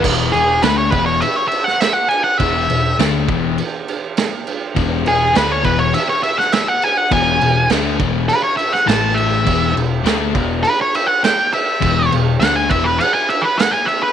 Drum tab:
CC |x-x-x-x-x-x-x-x-|x-x-x-x-x-x-x-x-|x-x-x-x-x-x-x-x-|x-x-x-x-x-x-x-x-|
SD |----o------oo---|----o-------o---|----o------oo---|----o------oo---|
BD |o-----o---------|o-----o---------|o-----o---------|o-----o---------|

CC |x-x-x-x-x-x-x-x-|x-x-x-x-x-x-x-x-|
SD |----o-------o---|----o-------o---|
BD |o-----o---------|o-----o---------|